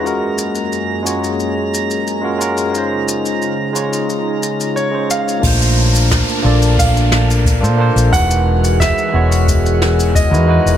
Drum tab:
CC |----------------|----------------|x---------------|----------------|
HH |----------------|----------------|o--oo--oo-ooo--o|o--oo--oo-ooo--o|
SH |x-xxx-xxx-xxx-xx|x-xxx-xxx-xxx-xx|xx-xxx-xxx-xxx-x|xx-xxx-xxx-xxx-x|
SD |----------------|----------------|----o-----o-----|----o-----o-----|
BD |----------------|----------------|o---o---o---o---|o---o---o---o---|